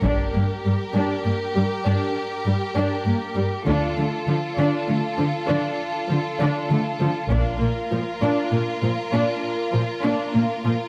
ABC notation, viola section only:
X:1
M:12/8
L:1/8
Q:3/8=66
K:Bb
V:1 name="Viola section"
D B, G, D B, G, D z G, D B, G, | D A, F, D A, F, D z F, D A, F, | D B, F, D B, F, D z F, D B, F, |]